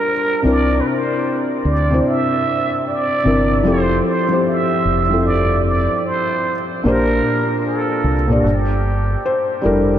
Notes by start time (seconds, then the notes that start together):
Already playing: G3 D4 F4 G4 A#4 C5
0.42 C2 C3 C4 D4 E4
0.47 A#4 D5
0.81 B4
0.87 C5
1.65 D2 D5
1.90 C3 C4 D4 E4 C5
2.07 E5
2.87 D5
3.23 G1 C3 C4 D4 E4 A#4
3.63 F1 F3 C4 E4 G4 C5
3.68 A4
4.07 C5
4.28 F3 C4 E4 G4
4.33 C5
4.47 E5
4.85 F1
5.09 F3 C4 E4 G4
5.14 A4
5.26 D5
5.66 D5
6.06 C5
6.84 A#1 A#2 A#3 D4 G4 A#4
6.88 C5
7.67 A4
8.04 C2
8.28 A#2 A#3 D4 G4
8.32 D5
8.42 G1 F#4
8.47 G4
9.26 C5
9.62 F1 G3 D4 E4 A4
9.66 A#4